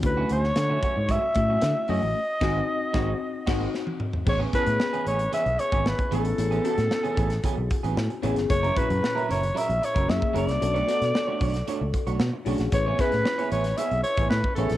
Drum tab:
CC |----------------|--x-------x-----|x---------------|----------------|
HH |x-x-x-x-x-x-x-o-|----------------|--xx-xxxxxxx-xxx|xxxx-xxxx-xx-xxx|
SD |---oo-------o---|--o---o---o-o---|--o-o-------o---|---oo--o----o--o|
T1 |----------------|-------------o--|----------------|----------------|
T2 |----------------|--------------o-|----------------|----------------|
FT |----------------|---------------o|----------------|----------------|
BD |o-----o-o-o-----|--o---o---o-----|o-o--------o-o--|------o-o-o-----|

CC |----------------|----------------|----------------|
HH |xxxx-xxxxxxx--xx|xxxx--oxx-xx--ox|x-xx-xxxxxxx--xx|
SD |----o-------o--o|--ooo--o----o--o|--ooo--o----o--o|
T1 |----------------|----------------|----------------|
T2 |----------------|----------------|----------------|
FT |----------------|----------------|----------------|
BD |o-o--------o-o--|------o---o-----|o-o--------o-o--|